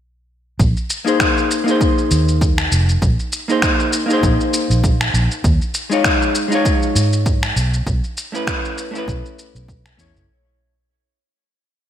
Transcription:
0.60 0.72 A#1 medium
0.60 kick medium
0.60 shaker soft
0.77 shaker soft
0.90 shaker medium
1.05 1.62 A#3 medium
1.05 1.63 D#4 medium
1.05 1.63 G#4 medium
1.05 1.64 C5 medium
1.05 shaker soft
1.20 finger snap medium
1.20 kick medium
1.20 shaker soft
1.38 shaker soft
1.51 shaker medium
1.64 3.43 A#3 medium
1.64 3.44 D#4 medium
1.64 shaker soft
1.68 3.46 G#4 medium
1.68 3.47 C5 medium
1.81 kick loud
1.81 shaker soft
1.98 shaker soft
2.11 2.67 D#2 medium
2.11 shaker medium
2.28 shaker soft
2.41 kick medium
2.41 shaker soft
2.58 finger snap medium
2.58 shaker soft
2.72 2.96 F1 medium
2.72 shaker medium
2.89 shaker soft
3.02 3.15 A#1 medium
3.02 kick medium
3.02 shaker soft
3.19 shaker soft
3.33 shaker medium
3.48 4.05 A#3 medium
3.48 4.06 D#4 medium
3.48 4.06 G#4 medium
3.48 4.07 C5 medium
3.48 shaker soft
3.62 finger snap medium
3.62 kick loud
3.62 shaker soft
3.80 shaker soft
3.93 shaker medium
4.06 5.41 A#3 medium
4.06 5.42 D#4 medium
4.10 5.43 G#4 medium
4.10 5.44 C5 medium
4.10 shaker soft
4.23 4.36 A#1 medium
4.23 kick loud
4.23 shaker soft
4.41 shaker soft
4.54 shaker medium
4.70 5.09 A#1 medium
4.70 shaker soft
4.84 kick loud
4.84 shaker soft
5.01 finger snap medium
5.01 shaker soft
5.14 5.27 A#1 medium
5.14 shaker medium
5.31 shaker soft
5.44 5.57 D#2 medium
5.44 kick loud
5.44 shaker soft
5.62 shaker soft
5.74 shaker medium
5.90 6.47 G#3 medium
5.90 6.48 D#4 medium
5.90 6.48 F4 medium
5.90 6.49 C#5 medium
5.90 shaker soft
6.04 finger snap medium
6.04 kick loud
6.04 shaker soft
6.22 shaker soft
6.35 shaker medium
6.48 7.53 G#3 medium
6.48 7.54 D#4 medium
6.48 shaker soft
6.53 7.55 F4 medium
6.53 7.56 C#5 medium
6.65 kick loud
6.65 shaker soft
6.82 shaker soft
6.96 7.51 G#2 medium
6.96 shaker medium
7.13 shaker soft
7.26 kick loud
7.26 shaker soft
7.43 finger snap medium
7.43 shaker soft
7.56 7.80 B1 medium
7.56 shaker medium
7.74 shaker soft
7.86 8.00 B1 loud
7.86 kick loud
7.86 shaker soft
8.04 shaker soft
8.17 shaker medium
8.32 8.90 A3 medium
8.32 8.90 C#4 medium
8.32 8.91 E4 medium
8.32 8.91 B4 medium
8.32 shaker soft
8.47 finger snap medium
8.47 kick loud
8.47 shaker soft
8.65 shaker soft
8.78 shaker medium
8.91 9.94 A3 medium
8.91 9.96 C#4 medium
8.95 9.97 E4 medium
8.95 9.98 B4 medium
8.95 shaker soft
9.08 9.21 B1 loud
9.08 kick loud
9.08 shaker soft
9.26 shaker soft
9.39 shaker medium
9.55 9.94 B1 medium
9.55 shaker soft
9.68 kick loud
9.68 shaker soft
9.86 finger snap medium
9.86 shaker soft
9.97 10.12 E2 medium
9.97 10.27 A3 medium
9.97 10.27 C#4 medium
9.97 10.28 E4 medium
9.97 10.29 C#5 medium
9.97 shaker medium
10.16 10.26 F#1 medium
10.16 shaker soft

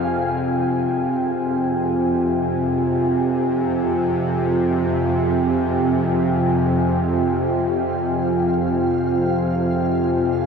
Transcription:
0.00 0.44 F2 medium
0.00 0.44 C3 medium
0.00 10.46 F4 medium
0.00 10.46 C5 medium
0.00 0.46 F5 medium
0.00 10.46 G5 medium
0.00 10.46 G#5 medium
0.45 10.46 F2 medium
0.45 10.46 C3 medium
0.45 10.46 F5 medium

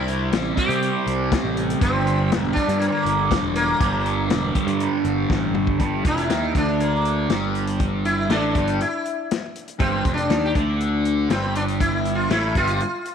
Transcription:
0.00 0.32 C2 loud
0.00 0.55 C3 medium
0.00 0.58 G3 medium
0.00 0.55 C4 medium
0.00 0.58 E4 medium
0.08 closed hi-hat medium
0.32 0.51 A1 medium
0.32 snare loud
0.32 closed hi-hat medium
0.56 1.83 G3 medium
0.56 1.79 C4 medium
0.56 1.53 G4 medium
0.56 kick medium
0.56 closed hi-hat medium
0.60 1.81 C3 medium
0.69 0.89 C3 loud
0.69 closed hi-hat medium
0.82 closed hi-hat medium
1.07 1.36 C2 medium
1.07 closed hi-hat medium
1.32 kick medium
1.32 snare loud
1.32 closed hi-hat medium
1.43 1.73 A1 medium
1.57 closed hi-hat medium
1.70 closed hi-hat medium
1.80 2.31 G1 loud
1.80 2.58 G2 medium
1.80 2.55 D3 medium
1.80 2.55 G3 medium
1.80 2.38 C4 medium
1.80 kick loud
1.80 closed hi-hat medium
2.07 closed hi-hat medium
2.31 2.51 E1 medium
2.31 snare loud
2.31 closed hi-hat medium
2.38 2.53 A#3 medium
2.53 3.82 G3 medium
2.53 2.79 D4 loud
2.53 kick medium
2.53 closed hi-hat medium
2.57 3.78 G2 medium
2.57 3.80 D3 medium
2.68 2.88 G2 loud
2.68 closed hi-hat medium
2.79 2.87 A#3 medium
2.79 closed hi-hat medium
2.88 2.92 C4 medium
2.92 3.27 A#3 medium
3.05 3.35 G1 medium
3.05 closed hi-hat medium
3.31 kick medium
3.31 snare loud
3.31 closed hi-hat medium
3.43 3.72 E1 medium
3.55 5.26 A#3 loud
3.55 snare soft
3.55 closed hi-hat medium
3.79 4.30 G1 loud
3.79 4.53 G2 medium
3.79 4.54 D3 medium
3.79 kick loud
3.79 closed hi-hat medium
3.83 4.53 G3 medium
4.06 closed hi-hat medium
4.30 4.50 E1 medium
4.30 snare loud
4.30 closed hi-hat medium
4.54 5.78 G2 medium
4.54 5.79 D3 medium
4.54 5.78 G3 medium
4.54 kick medium
4.54 closed hi-hat medium
4.67 4.87 G2 medium
4.67 closed hi-hat medium
4.80 closed hi-hat medium
5.04 5.24 G1 medium
5.04 closed hi-hat medium
5.30 5.52 A1 medium
5.30 kick medium
5.30 snare medium
5.54 5.77 G1 medium
5.54 mid tom medium
5.67 kick medium
5.79 6.03 G1 medium
5.79 6.04 G2 medium
5.79 6.04 G3 medium
5.79 kick loud
5.79 closed hi-hat medium
6.05 6.28 F1 medium
6.05 6.29 F2 medium
6.05 6.29 F3 medium
6.05 6.57 E4 loud
6.05 kick loud
6.05 closed hi-hat medium
6.17 closed hi-hat medium
6.29 6.53 D#2 medium
6.29 6.54 D#3 medium
6.29 6.54 D#4 loud
6.29 snare loud
6.29 closed hi-hat medium
6.54 7.26 D2 medium
6.54 7.29 D3 medium
6.54 7.29 D4 loud
6.54 6.80 D4 medium
6.54 kick loud
6.54 closed hi-hat medium
6.80 7.27 A#3 medium
6.80 closed hi-hat medium
7.05 closed hi-hat medium
7.29 8.26 G1 medium
7.29 8.29 G2 medium
7.29 8.30 G3 medium
7.29 snare loud
7.29 closed hi-hat medium
7.55 closed hi-hat medium
7.67 closed hi-hat medium
7.80 kick loud
7.80 closed hi-hat medium
8.05 8.30 E4 loud
8.05 closed hi-hat medium
8.29 8.53 A1 medium
8.29 8.54 A2 loud
8.29 8.54 A3 loud
8.29 8.77 D4 medium
8.29 snare loud
8.29 closed hi-hat medium
8.55 8.78 G1 loud
8.55 8.79 G2 medium
8.55 8.80 G3 medium
8.55 kick loud
8.55 closed hi-hat medium
8.67 closed hi-hat medium
8.81 9.27 E4 medium
8.81 closed hi-hat medium
9.05 closed hi-hat medium
9.31 snare loud
9.31 closed hi-hat medium
9.55 closed hi-hat medium
9.68 closed hi-hat medium
9.79 10.03 G1 medium
9.79 10.04 G2 medium
9.79 10.04 G3 medium
9.79 10.13 C4 medium
9.79 kick loud
9.79 closed hi-hat medium
10.05 10.28 F1 medium
10.05 10.29 F2 medium
10.05 10.30 F3 loud
10.05 kick loud
10.05 closed hi-hat medium
10.14 10.48 D4 medium
10.14 closed hi-hat medium
10.30 10.53 D#2 medium
10.30 10.54 D#3 medium
10.30 10.55 D#4 loud
10.30 snare loud
10.30 closed hi-hat medium
10.45 10.52 G4 medium
10.55 11.26 D2 medium
10.55 11.29 D3 medium
10.55 11.30 D4 loud
10.55 kick loud
10.55 closed hi-hat medium
10.80 closed hi-hat medium
11.05 closed hi-hat medium
11.29 12.26 G1 medium
11.29 12.29 G2 medium
11.29 12.30 G3 loud
11.29 11.54 C4 medium
11.29 snare loud
11.29 closed hi-hat medium
11.55 11.63 D4 medium
11.55 closed hi-hat medium
11.68 closed hi-hat medium
11.80 12.15 E4 medium
11.80 kick loud
11.80 closed hi-hat medium
12.05 closed hi-hat medium
12.15 12.32 F4 medium
12.30 12.53 A1 medium
12.30 12.55 A2 medium
12.30 12.55 A3 loud
12.30 12.57 E4 medium
12.30 snare loud
12.30 closed hi-hat medium
12.55 12.79 G1 medium
12.55 12.80 G2 medium
12.55 12.80 G3 loud
12.55 13.15 F4 medium
12.55 kick medium
12.55 closed hi-hat medium
12.67 closed hi-hat medium
12.80 closed hi-hat medium
13.05 closed hi-hat medium

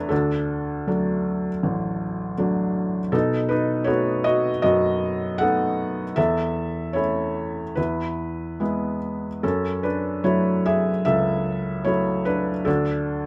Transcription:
0.00 0.12 E2 soft
0.00 0.13 A3 soft
0.00 0.11 D4 medium
0.00 0.13 E4 soft
0.00 0.12 G#4 medium
0.00 0.09 A4 medium
0.00 0.11 B4 medium
0.00 0.13 C#5 medium
0.00 0.13 E5 medium
0.09 3.09 D2 soft
0.09 0.86 D4 soft
0.09 2.34 A4 medium
0.87 1.48 F#3 soft
0.87 1.48 A3 soft
0.87 1.49 D4 soft
1.63 3.09 A1 soft
2.38 2.98 F#3 soft
2.38 2.98 A3 soft
2.38 2.99 D4 soft
3.12 6.12 B2 medium
3.12 3.48 D#4 medium
3.12 3.51 A4 medium
3.49 3.85 D#4 medium
3.49 3.88 B4 medium
3.84 4.49 A3 soft
3.84 4.49 B3 soft
3.84 4.49 D#4 soft
3.84 4.22 F#4 soft
3.84 4.25 C#5 medium
4.24 4.62 F#4 medium
4.24 4.61 D#5 medium
4.62 6.13 F#2 soft
4.62 5.37 F#4 medium
4.62 5.42 D#5 medium
5.38 6.02 A3 soft
5.38 6.02 B3 soft
5.38 6.03 D#4 soft
5.38 6.13 A4 medium
5.38 6.18 F#5 medium
6.16 7.74 E2 soft
6.16 6.92 A4 medium
6.16 6.98 E5 medium
6.93 7.61 A3 soft
6.93 7.61 C#4 soft
6.93 7.73 E4 soft
6.93 7.79 C#5 medium
7.75 9.39 E2 soft
7.75 8.59 E4 soft
7.75 8.97 B4 medium
8.60 9.26 G#3 soft
8.60 9.27 B3 soft
8.60 9.27 E4 soft
9.43 12.62 F#2 soft
9.43 9.81 C#4 soft
9.43 9.85 A4 medium
9.83 10.22 D4 soft
9.83 10.21 B4 medium
10.24 10.89 F#3 soft
10.24 10.90 A3 soft
10.24 10.63 E4 soft
10.24 10.66 C#5 medium
10.66 11.04 G#4 medium
10.66 11.03 E5 medium
11.05 12.62 C#2 soft
11.05 11.82 A4 medium
11.05 11.88 E5 medium
11.85 12.50 F#3 soft
11.85 12.50 A3 soft
11.85 12.23 E4 medium
11.85 12.26 C#5 medium
12.25 12.64 D4 soft
12.25 12.67 B4 medium
12.65 13.26 D2 medium
12.65 13.26 D4 soft
12.65 13.26 A4 medium

